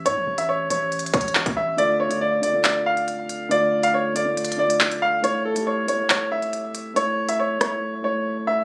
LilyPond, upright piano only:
\new Staff \with { instrumentName = "Upright piano" } { \time 4/4 \key d \minor \tempo 4 = 139 cis''8. e''16 cis''8 cis''4 cis''4 e''8 | d''8 cis''8 d''8 d''8 d''8 f''4. | d''8. f''16 cis''8 d''4 d''4 f''8 | cis''8 a'8 cis''8 cis''8 cis''8 e''4. |
cis''8. e''16 cis''8 cis''4 cis''4 e''8 | }